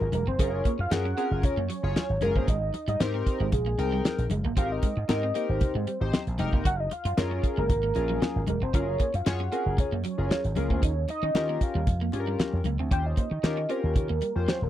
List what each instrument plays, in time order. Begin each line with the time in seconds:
Already playing: soft synth lead A#4
0.01 slap bass G#1
0.12 slap bass E1, clean electric guitar G#3, soft synth lead A#4, closed hi-hat, high conga
0.27 slap bass F1, clean electric guitar C4, soft synth lead C5
0.39 slap bass F#1, analog polysynth C#4 F4 G#4 A#4, clean electric guitar C#4, soft synth lead C#5, kick, closed hi-hat, muted conga
0.65 clean electric guitar A#3, kick, closed hi-hat, muted conga
0.79 slap bass F#2, soft synth lead F5, muted clean electric guitar stroke
0.91 slap bass F#2, analog polysynth C#4 F4 G#4 A#4, soft synth lead F#5, muted clean electric guitar stroke, snare, closed hi-hat, high conga
1.05 clean electric guitar C#4
1.17 clean electric guitar C4, analog polysynth C#4 F4 G#4 A#4, closed hi-hat
1.31 slap bass F#1
1.43 soft synth lead C#5, muted clean electric guitar stroke, kick, closed hi-hat, muted conga, low conga
1.57 slap bass F#2, clean electric guitar A#3
1.70 clean electric guitar F#3, closed hi-hat
1.83 slap bass F#1, analog polysynth C#4 F4 G#4 C#5
1.96 muted clean electric guitar stroke, snare, closed hi-hat, high conga
2.10 slap bass G#1
2.21 slap bass F#1, clean electric guitar G#3, analog polysynth C#4 F4 G#4 A#4, soft synth lead A#4, closed hi-hat, high conga
2.36 slap bass G1, clean electric guitar A#3, soft synth lead C5, kick
2.48 slap bass G#1, clean electric guitar G#3, soft synth lead D#5, kick, closed hi-hat, muted conga
2.74 muted clean electric guitar stroke, closed hi-hat, muted conga
2.88 slap bass G#2, clean electric guitar G3, soft synth lead D#5, closed hi-hat
3.00 slap bass G#2, analog polysynth C4 D#4 G4 A#4, soft synth lead C5, snare, closed hi-hat, high conga
3.14 clean electric guitar C4
3.26 muted clean electric guitar stroke, kick, closed hi-hat
3.40 slap bass G#1, clean electric guitar G#3
3.52 slap bass A#1, soft synth lead G#4, kick, closed hi-hat, muted conga, low conga
3.66 clean electric guitar A#3
3.78 slap bass C2, analog polysynth C4 D#4 A#4 G5, muted clean electric guitar stroke, closed hi-hat
3.92 clean electric guitar G3
4.05 muted clean electric guitar stroke, snare, closed hi-hat, high conga
4.18 slap bass A#1, closed hi-hat
4.30 slap bass F#1, clean electric guitar G#3, closed hi-hat, high conga
4.45 slap bass G1, clean electric guitar A#3
4.57 slap bass G#1, analog polysynth C4 D#4 G4 A#4, clean electric guitar C4, soft synth lead F5, kick, closed hi-hat, muted conga
4.72 soft synth lead D#5
4.83 clean electric guitar G#3, kick, closed hi-hat, muted conga
4.97 slap bass G#2, muted clean electric guitar stroke
5.08 slap bass G#2, analog polysynth C4 D#4 G4 A#4, soft synth lead D#5, muted clean electric guitar stroke, snare, closed hi-hat, high conga
5.23 clean electric guitar C4
5.35 clean electric guitar A#3, analog polysynth C4 D#4 G4 A#4, closed hi-hat
5.49 slap bass G#1, soft synth lead C5
5.61 muted clean electric guitar stroke, kick, closed hi-hat, muted conga, low conga
5.75 slap bass G#2, clean electric guitar G#3
5.87 clean electric guitar G3, closed hi-hat
6.00 slap bass G#1, analog polysynth C4 D#4 G4 C5
6.13 muted clean electric guitar stroke, snare, closed hi-hat, high conga
6.27 slap bass A#1, closed hi-hat
6.39 slap bass E1, clean electric guitar G#3, analog polysynth C4 D#4 G4 A#4, closed hi-hat, high conga
6.53 slap bass F1, clean electric guitar A#3, kick
6.65 slap bass F#1, clean electric guitar F#4, soft synth lead F#5, kick, closed hi-hat, muted conga
6.77 soft synth lead D#5 F5
6.91 soft synth lead F5, muted clean electric guitar stroke, closed hi-hat, muted conga
7.05 slap bass F#2, clean electric guitar F4, closed hi-hat
7.17 slap bass F#2, analog polysynth C#4 F4 G#4 A#4, soft synth lead C#5, snare, closed hi-hat, high conga
7.31 clean electric guitar C#4
7.43 muted clean electric guitar stroke, kick, closed hi-hat
7.57 slap bass F#1, clean electric guitar G#3, soft synth lead A#4
7.70 slap bass G#1, kick, closed hi-hat, muted conga, low conga
7.83 clean electric guitar A#3
7.95 slap bass A#1, analog polysynth C#4 F4 G#4 A#4, muted clean electric guitar stroke, closed hi-hat, muted conga
8.10 clean electric guitar F#3
8.22 muted clean electric guitar stroke, snare, closed hi-hat, high conga
8.36 slap bass G#1
8.47 slap bass E1, clean electric guitar G#3, soft synth lead A#4, closed hi-hat, high conga
8.62 slap bass F1, clean electric guitar C4, soft synth lead C5
8.74 slap bass F#1, analog polysynth C#4 F4 G#4 A#4, clean electric guitar C#4, soft synth lead C#5, kick, closed hi-hat, muted conga
9.00 clean electric guitar A#3, kick, closed hi-hat, muted conga
9.14 slap bass F#2, soft synth lead F5, muted clean electric guitar stroke, closed hi-hat
9.26 slap bass F#2, analog polysynth C#4 F4 G#4 C#5, soft synth lead F#5, muted clean electric guitar stroke, snare, closed hi-hat, high conga
9.40 clean electric guitar C#4
9.52 clean electric guitar C4, analog polysynth C#4 F4 G#4 A#4, closed hi-hat
9.66 slap bass F#1
9.78 soft synth lead C#5, muted clean electric guitar stroke, kick, closed hi-hat, muted conga, low conga
9.92 slap bass F#2, clean electric guitar A#3
10.04 clean electric guitar F#3, closed hi-hat, muted conga
10.18 slap bass F#1, analog polysynth C#4 F4 G#4 A#4
10.31 muted clean electric guitar stroke, snare, closed hi-hat, high conga
10.44 slap bass G#1, closed hi-hat
10.56 slap bass C#2, clean electric guitar G#3, analog polysynth C#4 F4 G#4 A#4, soft synth lead A#4, closed hi-hat, high conga
10.70 slap bass D2, clean electric guitar A#3, soft synth lead C5, kick
10.83 slap bass D#2, clean electric guitar D#4, soft synth lead C#5, kick, closed hi-hat, muted conga
11.09 soft synth lead D#5, muted clean electric guitar stroke, closed hi-hat, muted conga
11.23 slap bass D#3, clean electric guitar C#4
11.35 slap bass D#3, analog polysynth C#4 F4 G4 A#4, snare, closed hi-hat, high conga
11.49 clean electric guitar A#3
11.61 soft synth lead F5, muted clean electric guitar stroke, kick, closed hi-hat
11.75 slap bass D#2, clean electric guitar G3
11.87 slap bass F2, kick, closed hi-hat, muted conga, low conga
12.01 clean electric guitar A#3
12.12 slap bass G2, analog polysynth C#4 F4 G4 G#4, muted clean electric guitar stroke, closed hi-hat, muted conga
12.20 analog polysynth A#4
12.27 clean electric guitar G3
12.39 muted clean electric guitar stroke, snare, closed hi-hat, high conga
12.53 slap bass F2
12.64 slap bass C#2, clean electric guitar A#3, closed hi-hat, high conga
12.79 slap bass D2, clean electric guitar C4
12.91 slap bass D#2, analog polysynth C#4 F4 G4 C5, clean electric guitar C#4, soft synth lead G5, kick, closed hi-hat, muted conga
13.06 soft synth lead D#5
13.17 clean electric guitar A#3, kick, closed hi-hat, muted conga
13.31 slap bass D#3, muted clean electric guitar stroke
13.43 slap bass D#3, analog polysynth C#4 F4 G4 A#4, muted clean electric guitar stroke, snare, closed hi-hat, high conga
13.57 clean electric guitar C#4
13.69 clean electric guitar C4, analog polysynth C#4 F4 G4 A#4, soft synth lead C5, closed hi-hat
13.84 slap bass D#2, soft synth lead A#4
13.96 slap bass D#3, muted clean electric guitar stroke, kick, closed hi-hat, muted conga, low conga
14.09 slap bass D#2, clean electric guitar A#3
14.21 clean electric guitar G3, closed hi-hat, muted conga
14.35 slap bass F2, analog polysynth C#4 F4 G4 C5
14.48 soft synth lead C5, muted clean electric guitar stroke, snare, closed hi-hat, high conga
14.62 slap bass D#1, soft synth lead A#4